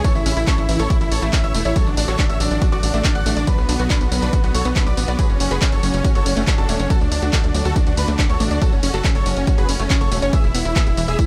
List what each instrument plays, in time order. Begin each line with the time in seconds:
Already playing: string section C#3 E3
0.04 synth arpeggio sound E3, string section A3 E4, supersaw synth A4 C#5, grand piano C#6, kick, closed hi-hat, tambourine
0.15 analog synth bass A1, supersaw synth E4, grand piano E5, tambourine
0.26 analog synth bass A1, synth arpeggio sound C#4, supersaw synth E4, grand piano E5, open hi-hat, tambourine
0.37 analog synth bass A1, supersaw synth E4, synth arpeggio sound E4, grand piano E5, closed hi-hat, tambourine
0.47 synth arpeggio sound C#4, supersaw synth A4 C#5, grand piano C#6, kick, clap, closed hi-hat, tambourine
0.58 analog synth bass A1, supersaw synth E4, grand piano E5, closed hi-hat, tambourine
0.69 analog synth bass A1, synth arpeggio sound E3, supersaw synth E4, grand piano E5, open hi-hat, tambourine
0.79 analog synth bass A1, supersaw synth A4 C#5, grand piano C#6, closed hi-hat, tambourine
0.90 synth arpeggio sound E4, supersaw synth E4, grand piano E5, kick, closed hi-hat, tambourine
1.01 analog synth bass A1, synth arpeggio sound E4, supersaw synth E4, grand piano E5, closed hi-hat, tambourine
1.12 analog synth bass A1, supersaw synth A4 C#5, grand piano C#6, open hi-hat, tambourine
1.22 analog synth bass A1, synth arpeggio sound A3, supersaw synth E4, grand piano E5, closed hi-hat, tambourine
1.33 synth arpeggio sound C#4, supersaw synth E4, grand piano E5, kick, clap, closed hi-hat, tambourine
1.44 analog synth bass A1, supersaw synth C#5 E5, grand piano E6, closed hi-hat, tambourine
1.54 analog synth bass E1, synth arpeggio sound A3, supersaw synth E4, grand piano E5, open hi-hat, tambourine
1.65 analog synth bass A1, supersaw synth E4, synth arpeggio sound C#5, grand piano E5, closed hi-hat, tambourine
1.76 string section D3 F#3 F#4, synth arpeggio sound F#3, supersaw synth A4 C#5, grand piano C#6, kick, closed hi-hat, tambourine
1.86 analog synth bass A1, supersaw synth D4, grand piano D5, tambourine
1.97 analog synth bass A1, synth arpeggio sound D4, supersaw synth D4, grand piano D5, open hi-hat, tambourine
2.08 analog synth bass A1, synth arpeggio sound F#4, supersaw synth A4 C#5, grand piano C#6, clap, closed hi-hat, tambourine
2.19 synth arpeggio sound D4, supersaw synth D4, grand piano D5, kick, clap, closed hi-hat, tambourine
2.29 analog synth bass A1, supersaw synth C#5 E5, grand piano E6, closed hi-hat, tambourine
2.40 analog synth bass A1, synth arpeggio sound F#3, supersaw synth D4, grand piano D5, open hi-hat, tambourine
2.51 analog synth bass A1, supersaw synth D4, grand piano D5, closed hi-hat, tambourine
2.62 supersaw synth D4, synth arpeggio sound F#4, grand piano D5, kick, closed hi-hat, tambourine
2.72 analog synth bass A1, synth arpeggio sound F#4, supersaw synth F#4 D5, grand piano D6, closed hi-hat, tambourine
2.83 analog synth bass A1, supersaw synth D4, grand piano D5, open hi-hat, tambourine
2.94 analog synth bass A1, synth arpeggio sound A3, supersaw synth D4, grand piano D5, closed hi-hat, tambourine
3.04 synth arpeggio sound D4, supersaw synth D4, grand piano D5, kick, clap, closed hi-hat, tambourine
3.15 analog synth bass A1, supersaw synth D5 F#5, grand piano F#6, closed hi-hat, tambourine
3.26 analog synth bass A1, synth arpeggio sound A3, supersaw synth D4, grand piano D5, open hi-hat, tambourine
3.37 analog synth bass A1, supersaw synth D4, synth arpeggio sound D5, grand piano D5, closed hi-hat, tambourine
3.47 synth arpeggio sound F#3, string section B3, supersaw synth D4 B4, grand piano B5, kick, closed hi-hat, tambourine
3.58 analog synth bass B1, supersaw synth B3, grand piano B4, tambourine
3.69 analog synth bass B1, supersaw synth B3, synth arpeggio sound D4, grand piano B4, open hi-hat, tambourine
3.79 analog synth bass B1, supersaw synth B3, synth arpeggio sound F#4, grand piano B4, closed hi-hat, tambourine
3.90 supersaw synth D4 B4, synth arpeggio sound D4, grand piano B5, kick, clap, closed hi-hat, tambourine
4.01 analog synth bass B1, supersaw synth B3, grand piano B4, closed hi-hat, tambourine
4.12 analog synth bass B1, synth arpeggio sound F#3, supersaw synth B3, grand piano B4, open hi-hat, tambourine
4.22 analog synth bass B1, supersaw synth D4 B4, grand piano B5, closed hi-hat, tambourine
4.33 supersaw synth B3, synth arpeggio sound F#4, grand piano B4, kick, closed hi-hat, tambourine
4.44 analog synth bass B1, supersaw synth B3, synth arpeggio sound F#4, grand piano B4, closed hi-hat, tambourine
4.54 analog synth bass B1, supersaw synth A4 C#5, grand piano C#6, open hi-hat, tambourine
4.65 analog synth bass B1, supersaw synth B3, synth arpeggio sound B3, grand piano B4, closed hi-hat, tambourine
4.76 supersaw synth B3, synth arpeggio sound D4, grand piano B4, kick, clap, closed hi-hat, tambourine
4.87 analog synth bass B1, supersaw synth B4 D5, grand piano D6, closed hi-hat, tambourine
4.97 analog synth bass A1, synth arpeggio sound B3, supersaw synth B3, grand piano B4, open hi-hat, tambourine
5.08 analog synth bass B1, supersaw synth B3, grand piano B4, synth arpeggio sound D5, closed hi-hat, tambourine
5.19 string section C#3 A3, synth arpeggio sound F#3, supersaw synth G#4 B4, grand piano B5, kick, closed hi-hat, tambourine
5.29 analog synth bass F#1, supersaw synth C#4, grand piano C#5, tambourine
5.40 analog synth bass F#1, synth arpeggio sound C#4, supersaw synth C#4, grand piano C#5, open hi-hat, tambourine
5.51 analog synth bass F#1, synth arpeggio sound F#4, supersaw synth G#4 B4, grand piano B5, clap, closed hi-hat, tambourine
5.62 synth arpeggio sound C#4, supersaw synth C#4, grand piano C#5, kick, clap, closed hi-hat, tambourine
5.72 analog synth bass F#1, supersaw synth A4 C#5, grand piano C#6, closed hi-hat, tambourine
5.83 analog synth bass F#1, synth arpeggio sound F#3, supersaw synth C#4, grand piano C#5, open hi-hat, tambourine
5.94 analog synth bass F#1, supersaw synth C#4, grand piano C#5, closed hi-hat, tambourine
6.04 supersaw synth C#4, synth arpeggio sound F#4, grand piano C#5, kick, closed hi-hat, tambourine, swell
6.15 analog synth bass F#1, synth arpeggio sound F#4, supersaw synth A4 C#5, grand piano C#6, closed hi-hat, tambourine
6.26 analog synth bass F#1, supersaw synth C#4, grand piano C#5, open hi-hat, tambourine
6.37 analog synth bass F#1, synth arpeggio sound A3, supersaw synth C#4, grand piano C#5, closed hi-hat, tambourine
6.47 supersaw synth C#4, synth arpeggio sound C#4, grand piano C#5, kick, clap, closed hi-hat, tambourine
6.58 analog synth bass F#1, supersaw synth F#4 A4, grand piano A5, closed hi-hat, tambourine
6.69 analog synth bass E1, synth arpeggio sound A3, supersaw synth C#4, grand piano C#5, open hi-hat, tambourine
6.79 analog synth bass F#1, supersaw synth C#4, grand piano C#5, synth arpeggio sound C#5, closed hi-hat, tambourine
6.90 string section D3 F#4, synth arpeggio sound F#3, supersaw synth F#4 A4, grand piano A5, kick, closed hi-hat, tambourine
7.01 analog synth bass D2, supersaw synth D4, grand piano D5, tambourine
7.12 analog synth bass D2, synth arpeggio sound D4, supersaw synth D4, grand piano D5, open hi-hat, tambourine
7.22 analog synth bass D2, supersaw synth D4, synth arpeggio sound F#4, grand piano D5, closed hi-hat, tambourine
7.33 synth arpeggio sound D4, supersaw synth F#4 A4, grand piano A5, kick, clap, closed hi-hat, tambourine
7.44 analog synth bass D2, supersaw synth D4, grand piano D5, closed hi-hat, tambourine
7.54 analog synth bass D2, synth arpeggio sound F#3, supersaw synth D4, grand piano D5, open hi-hat, tambourine
7.65 analog synth bass D2, supersaw synth F#4 A4, grand piano A5, closed hi-hat, tambourine
7.76 supersaw synth D4, synth arpeggio sound F#4, grand piano D5, kick, closed hi-hat, tambourine
7.87 analog synth bass D2, supersaw synth D4, synth arpeggio sound F#4, grand piano D5, closed hi-hat, tambourine
7.97 analog synth bass D2, supersaw synth D4 B4, grand piano B5, open hi-hat, tambourine
8.08 analog synth bass D2, synth arpeggio sound A3, supersaw synth D4, grand piano D5, closed hi-hat, tambourine
8.19 synth arpeggio sound D4, supersaw synth D4, grand piano D5, kick, clap, closed hi-hat, tambourine
8.29 analog synth bass D2, supersaw synth A4 C#5, grand piano C#6, closed hi-hat, tambourine
8.40 analog synth bass A1, synth arpeggio sound A3, supersaw synth D4, grand piano D5, open hi-hat, tambourine
8.51 analog synth bass D2, supersaw synth D4, synth arpeggio sound D5, grand piano D5, closed hi-hat, tambourine
8.62 string section C#3, synth arpeggio sound F#3, supersaw synth F#4 A4, grand piano A5, kick, closed hi-hat, tambourine
8.72 analog synth bass F#1, supersaw synth C#4, grand piano C#5, tambourine
8.83 analog synth bass F#1, synth arpeggio sound C#4, supersaw synth C#4, grand piano C#5, open hi-hat, tambourine
8.94 analog synth bass F#1, synth arpeggio sound F#4, supersaw synth F#4 A4, grand piano A5, clap, closed hi-hat, tambourine
9.04 synth arpeggio sound C#4, supersaw synth C#4, grand piano C#5, kick, clap, closed hi-hat, tambourine
9.15 analog synth bass F#1, supersaw synth A4 C#5, grand piano C#6, closed hi-hat, tambourine
9.26 analog synth bass F#1, synth arpeggio sound F#3, supersaw synth C#4, grand piano C#5, open hi-hat, tambourine
9.37 analog synth bass F#1, supersaw synth C#4, grand piano C#5, closed hi-hat, tambourine
9.47 supersaw synth C#4, synth arpeggio sound F#4, grand piano C#5, kick, closed hi-hat, tambourine
9.58 analog synth bass F#1, synth arpeggio sound F#4, supersaw synth G#4 B4, grand piano B5, closed hi-hat, tambourine
9.69 analog synth bass F#1, supersaw synth C#4, grand piano C#5, open hi-hat, tambourine
9.79 analog synth bass F#1, synth arpeggio sound A3, supersaw synth C#4, grand piano C#5, closed hi-hat, tambourine
9.90 synth arpeggio sound C#4, supersaw synth C#4, grand piano C#5, kick, clap, closed hi-hat, tambourine
10.01 analog synth bass F#1, supersaw synth A4 C#5, grand piano C#6, closed hi-hat, tambourine
10.12 analog synth bass E1, synth arpeggio sound A3, supersaw synth C#4, grand piano C#5, open hi-hat, tambourine
10.22 analog synth bass F#1, supersaw synth C#4, grand piano C#5, synth arpeggio sound C#5, closed hi-hat, tambourine
10.33 string section B2 E3 G#3 E4, synth arpeggio sound E3, supersaw synth G#4 E5, grand piano E6, kick, closed hi-hat, tambourine
10.44 analog synth bass E1, supersaw synth E4, grand piano E5, tambourine
10.54 analog synth bass E1, synth arpeggio sound B3, supersaw synth E4, grand piano E5, open hi-hat, tambourine
10.65 analog synth bass E1, synth arpeggio sound E4, supersaw synth E4, grand piano E5, closed hi-hat, tambourine
10.76 synth arpeggio sound B3, supersaw synth G#4 E5, grand piano E6, kick, clap, closed hi-hat, tambourine
10.87 analog synth bass E1, supersaw synth E4, grand piano E5, closed hi-hat, tambourine
10.97 analog synth bass E1, synth arpeggio sound E3, supersaw synth E4, grand piano E5, open hi-hat, tambourine
11.08 analog synth bass E1, supersaw synth G#4 E5, grand piano E6, closed hi-hat, tambourine
11.19 synth arpeggio sound E4, supersaw synth E4, grand piano E5, kick, closed hi-hat, tambourine